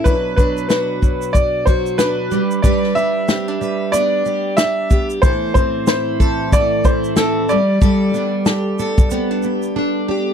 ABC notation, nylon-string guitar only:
X:1
M:4/4
L:1/16
Q:"Swing 16ths" 1/4=93
K:G
V:1 name="Nylon-string guitar"
[F,D]2 F,2 D2 F,4 F,2 D2 G,2 | [G,D]2 G,2 C D G,2 B,2 G,2 D2 B,2 | [E,E]2 E,2 E2 E,2 C2 E,2 E2 G,2 | [G,A]2 B,2 A2 B,2 C D B,2 A2 D2 |]